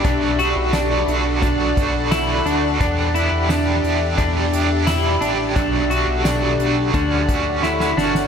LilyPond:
<<
  \new Staff \with { instrumentName = "Ambient pad" } { \time 4/4 \key e \dorian \tempo 4 = 87 << { b''1~ | b''1~ | b''2 r2 | } \\ { <a' d'' fis''>1 | <g' d'' e''>1 | fis''1 | } >> }
  \new Staff \with { instrumentName = "Clean electric guitar" } { \time 4/4 \key e \dorian d'8 fis'8 d'4 d'4 e'8 d'8 | d'8 e'8 d'4 d'4 e'8 d'8 | d'8 fis'8 d'4 d'4 e'8 d'8 | }
  \new Staff \with { instrumentName = "Overdriven electric guitar" } { \time 4/4 \key e \dorian <b, fis a d' fis'>8 <a d' fis'>8 <b, fis a d' fis'>8 <a d' fis'>8 <fis a d' fis'>8 <a d' fis'>8 <b, fis a d' fis'>8 <a d' fis'>8 | <e b d' g'>8 <b d' g'>8 <e b d' g'>8 <b d' g'>8 <e b d' g'>8 <b d' g'>8 <e b d' g'>8 <b d' g'>8 | <b, fis a d' fis'>8 <a d' fis'>8 <b, fis a d' fis'>8 <a d' fis'>8 <d a cis' fis'>8 <a cis' fis'>8 <d a cis' fis'>8 <a cis' fis'>8 | }
  \new Staff \with { instrumentName = "Analog synth bass" } { \clef bass \time 4/4 \key e \dorian b,,8. b,,8. b,,4 b,,4 d,8 | e,8. e,8. e,8 e,4. a,,8 | b,,8. b,,8. b,,8 d,8 d,4 g,,8 | }
  \new DrumStaff \with { instrumentName = "Drums" } \drummode { \time 4/4 <hh bd>8 hh8 <hh sn tamb>8 hh8 <hh bd>8 <hh bd>8 <hh sn tamb>8 hh8 | <hh bd>8 hh8 <hh sn tamb>8 hh8 <hh bd>8 hh8 <hh sn tamb>8 hh8 | <hh bd>8 hh8 <hh sn tamb>8 hh8 <hh bd>8 <hh bd>8 sn16 sn16 sn16 sn16 | }
>>